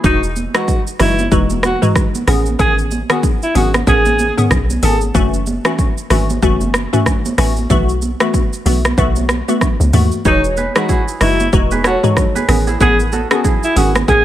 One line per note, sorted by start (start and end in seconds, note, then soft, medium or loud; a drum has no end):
0.00 0.29 E3 medium
0.00 0.29 G#3 medium
0.00 0.29 D#4 medium
0.00 1.30 E4 medium
0.00 0.74 F#4 medium
0.00 1.09 G#4 medium
0.00 0.18 B4 medium
0.04 0.48 E1 loud
0.04 0.20 D#4 loud
0.04 0.29 F#4 loud
0.04 kick loud
0.04 low conga medium
0.04 shaker medium
0.23 shaker medium
0.36 high conga medium
0.36 shaker medium
0.54 0.76 E3 medium
0.54 0.76 G#3 medium
0.54 0.76 D#4 medium
0.54 0.77 F#4 medium
0.54 0.82 F#4 medium
0.54 cross-stick loud
0.54 shaker soft
0.68 kick medium
0.68 low conga medium
0.68 shaker medium
0.87 shaker medium
1.00 1.28 F#1 medium
1.00 1.24 E3 medium
1.00 1.24 G#3 medium
1.00 1.25 D#4 medium
1.00 1.28 E4 medium
1.00 1.25 F#4 medium
1.00 cross-stick medium
1.00 open hi-hat medium
1.00 low conga medium
1.00 shaker medium
1.19 high conga medium
1.19 shaker medium
1.31 1.76 E1 loud
1.31 1.78 E3 medium
1.31 1.78 G#3 medium
1.31 1.78 D#4 medium
1.31 1.78 F#4 loud
1.31 kick loud
1.31 shaker medium
1.50 high conga medium
1.50 shaker medium
1.63 1.80 F#4 medium
1.63 cross-stick loud
1.63 high conga medium
1.63 shaker medium
1.82 2.24 E3 medium
1.82 2.24 G#3 medium
1.82 2.24 D#4 medium
1.82 2.24 F#4 medium
1.82 mid tom medium
1.82 shaker medium
1.95 kick loud
1.95 cross-stick medium
1.95 low conga medium
1.95 shaker medium
2.15 high conga medium
2.15 shaker medium
2.27 2.56 A1 loud
2.27 2.57 D#3 medium
2.27 2.57 B3 medium
2.27 2.57 C#4 medium
2.27 2.57 G#4 medium
2.27 cross-stick medium
2.27 open hi-hat medium
2.46 high conga medium
2.46 shaker soft
2.59 3.04 A1 loud
2.59 2.84 D#3 loud
2.59 2.84 B3 medium
2.59 2.84 C#4 medium
2.59 2.84 G#4 loud
2.59 2.76 G#4 loud
2.59 kick loud
2.59 low conga medium
2.59 shaker medium
2.78 shaker soft
2.91 high conga medium
2.91 shaker medium
3.10 3.32 D#3 medium
3.10 3.32 B3 medium
3.10 3.32 C#4 medium
3.10 3.22 F#4 medium
3.10 3.32 G#4 medium
3.10 cross-stick loud
3.10 shaker soft
3.23 kick loud
3.23 low conga medium
3.23 shaker medium
3.43 3.54 E4 medium
3.43 shaker medium
3.55 3.83 G#1 medium
3.55 3.80 D#3 medium
3.55 3.80 B3 medium
3.55 3.80 C#4 medium
3.55 3.72 F#4 medium
3.55 3.80 G#4 medium
3.55 open hi-hat medium
3.55 low conga medium
3.55 shaker medium
3.74 cross-stick loud
3.74 high conga medium
3.74 shaker medium
3.87 4.31 A1 loud
3.87 4.33 D#3 medium
3.87 4.33 B3 medium
3.87 4.33 C#4 medium
3.87 4.33 G#4 loud
3.87 4.35 G#4 loud
3.87 kick loud
3.87 shaker medium
4.05 high conga medium
4.05 shaker medium
4.19 high conga medium
4.19 shaker medium
4.37 4.59 D#3 medium
4.37 4.59 B3 medium
4.37 4.60 C#4 medium
4.37 4.60 G#4 medium
4.37 mid tom medium
4.37 shaker medium
4.50 4.79 B1 medium
4.50 kick loud
4.50 cross-stick loud
4.50 low conga medium
4.50 shaker medium
4.70 high conga medium
4.70 shaker medium
4.83 5.11 G#1 medium
4.83 5.07 D#3 medium
4.83 5.08 B3 medium
4.83 5.08 C#4 medium
4.83 5.08 G#4 medium
4.83 4.99 A4 medium
4.83 open hi-hat medium
5.01 high conga medium
5.01 shaker soft
5.14 5.59 F#1 loud
5.14 5.39 E3 loud
5.14 5.39 A3 medium
5.14 5.39 C#4 medium
5.14 5.40 F#4 loud
5.14 kick loud
5.14 low conga medium
5.14 shaker medium
5.34 shaker medium
5.46 high conga medium
5.46 shaker medium
5.65 5.87 E3 medium
5.65 5.87 A3 medium
5.65 5.87 C#4 medium
5.65 5.87 F#4 medium
5.65 cross-stick loud
5.65 shaker soft
5.79 kick medium
5.79 low conga medium
5.79 shaker medium
5.98 shaker medium
6.10 6.38 G#1 medium
6.10 6.35 E3 medium
6.10 6.35 A3 medium
6.10 6.35 C#4 medium
6.10 6.35 F#4 medium
6.10 cross-stick medium
6.10 open hi-hat medium
6.10 low conga medium
6.10 shaker medium
6.30 high conga medium
6.30 shaker medium
6.42 6.87 F#1 loud
6.42 6.88 E3 medium
6.42 6.89 A3 medium
6.42 6.89 C#4 medium
6.42 6.89 F#4 loud
6.42 kick loud
6.42 shaker medium
6.61 high conga medium
6.61 shaker medium
6.74 cross-stick loud
6.74 high conga medium
6.74 shaker medium
6.93 7.35 E3 medium
6.93 7.35 A3 medium
6.93 7.35 C#4 medium
6.93 7.35 F#4 medium
6.93 mid tom medium
6.93 shaker medium
7.06 kick medium
7.06 cross-stick medium
7.06 low conga medium
7.06 shaker medium
7.25 high conga medium
7.25 shaker medium
7.38 7.66 A1 loud
7.38 7.68 E3 medium
7.38 7.68 A3 medium
7.38 7.68 C#4 medium
7.38 7.68 F#4 medium
7.38 cross-stick medium
7.38 open hi-hat medium
7.57 high conga medium
7.57 shaker soft
7.70 8.14 B1 loud
7.70 7.95 E3 loud
7.70 7.95 A3 medium
7.70 7.95 B3 medium
7.70 7.95 F#4 loud
7.70 kick loud
7.70 low conga medium
7.70 shaker medium
7.89 shaker medium
8.02 high conga medium
8.02 shaker medium
8.20 8.42 E3 medium
8.20 8.42 A3 medium
8.20 8.42 B3 medium
8.20 8.43 F#4 medium
8.20 cross-stick loud
8.20 shaker medium
8.34 kick loud
8.34 low conga medium
8.34 shaker medium
8.53 shaker medium
8.66 8.94 B1 medium
8.66 8.91 E3 medium
8.66 8.91 A3 medium
8.66 8.91 B3 medium
8.66 8.91 F#4 medium
8.66 open hi-hat medium
8.66 low conga medium
8.66 shaker medium
8.85 cross-stick loud
8.85 high conga medium
8.85 shaker medium
8.98 9.42 B1 loud
8.98 9.44 E3 medium
8.98 9.44 A3 medium
8.98 9.44 B3 medium
8.98 9.44 F#4 loud
8.98 kick loud
8.98 shaker medium
9.16 high conga medium
9.16 shaker medium
9.29 cross-stick loud
9.29 high conga medium
9.29 shaker medium
9.48 9.70 E3 medium
9.48 9.70 A3 medium
9.48 9.70 B3 medium
9.48 9.70 F#4 medium
9.48 shaker medium
9.61 kick medium
9.61 cross-stick medium
9.61 low conga medium
9.61 shaker medium
9.80 9.92 C#2 medium
9.80 high conga medium
9.80 shaker medium
9.93 10.10 D#2 loud
9.93 10.18 E3 medium
9.93 10.18 A3 medium
9.93 10.18 B3 medium
9.93 10.18 F#4 medium
9.93 mid tom medium
9.93 open hi-hat medium
9.93 shaker medium
10.12 high conga medium
10.12 shaker soft
10.25 10.70 E1 loud
10.25 10.50 E3 loud
10.25 10.50 G#3 medium
10.25 10.50 D#4 medium
10.25 10.42 D#4 loud
10.25 10.50 F#4 loud
10.25 10.58 G#4 medium
10.25 11.40 C#5 loud
10.25 kick loud
10.25 low conga medium
10.25 shaker medium
10.44 shaker medium
10.57 10.76 G#4 medium
10.57 10.75 B4 medium
10.57 high conga medium
10.57 shaker medium
10.76 10.98 E3 medium
10.76 10.98 G#3 medium
10.76 10.98 D#4 medium
10.76 10.98 F#4 medium
10.76 11.04 F#4 medium
10.76 10.89 G#4 medium
10.76 11.71 B4 medium
10.76 cross-stick loud
10.76 shaker soft
10.89 12.47 E4 medium
10.89 11.72 G#4 medium
10.89 kick medium
10.89 low conga medium
10.89 shaker medium
11.08 shaker medium
11.21 11.49 F#1 medium
11.21 11.46 E3 medium
11.21 11.46 G#3 medium
11.21 11.46 D#4 medium
11.21 11.49 E4 medium
11.21 11.46 F#4 medium
11.21 cross-stick medium
11.21 open hi-hat medium
11.21 low conga medium
11.21 shaker medium
11.40 high conga medium
11.40 shaker medium
11.53 11.97 E1 loud
11.53 11.99 E3 medium
11.53 11.99 G#3 medium
11.53 11.99 D#4 medium
11.53 11.99 F#4 loud
11.53 kick loud
11.53 shaker medium
11.71 11.92 G#4 medium
11.71 12.35 B4 medium
11.71 high conga medium
11.71 shaker medium
11.84 12.01 F#4 medium
11.84 12.42 A4 medium
11.84 13.00 C#5 medium
11.84 cross-stick loud
11.84 high conga medium
11.84 shaker medium
12.03 12.46 E3 medium
12.03 12.46 G#3 medium
12.03 12.46 D#4 medium
12.03 12.46 F#4 medium
12.03 mid tom loud
12.03 shaker medium
12.16 kick medium
12.16 cross-stick medium
12.16 low conga medium
12.16 shaker medium
12.35 12.67 G#4 medium
12.35 12.80 B4 medium
12.35 high conga medium
12.35 shaker medium
12.49 12.77 A1 loud
12.49 12.78 D#3 medium
12.49 12.79 B3 medium
12.49 12.79 C#4 medium
12.49 12.79 G#4 medium
12.49 cross-stick medium
12.49 open hi-hat medium
12.67 13.45 E4 medium
12.67 12.81 G#4 medium
12.67 high conga medium
12.67 shaker soft
12.80 13.25 A1 loud
12.80 13.05 D#3 loud
12.80 13.05 B3 medium
12.80 13.05 C#4 medium
12.80 13.06 G#4 loud
12.80 13.19 G#4 medium
12.80 12.97 G#4 loud
12.80 14.04 B4 medium
12.80 kick loud
12.80 low conga medium
12.80 shaker medium
13.00 shaker medium
13.12 13.31 F#4 medium
13.12 13.31 A4 medium
13.12 high conga medium
13.12 shaker medium
13.31 13.53 D#3 medium
13.31 13.53 B3 medium
13.31 13.53 C#4 medium
13.31 14.25 F#4 medium
13.31 13.43 F#4 medium
13.31 13.53 G#4 medium
13.31 13.50 A4 medium
13.31 cross-stick loud
13.31 shaker soft
13.44 14.25 E4 medium
13.44 14.25 G#4 medium
13.44 kick loud
13.44 low conga medium
13.44 shaker medium
13.63 13.75 E4 medium
13.63 shaker medium
13.76 14.04 G#1 medium
13.76 14.01 D#3 medium
13.76 14.01 B3 medium
13.76 14.01 C#4 medium
13.76 13.93 F#4 medium
13.76 14.01 G#4 medium
13.76 open hi-hat medium
13.76 low conga medium
13.76 shaker medium
13.95 cross-stick loud
13.95 high conga medium
13.95 shaker medium
14.08 14.25 A1 loud
14.08 14.25 D#3 loud
14.08 14.25 B3 medium
14.08 14.25 C#4 medium
14.08 14.25 G#4 loud
14.08 kick loud
14.08 shaker medium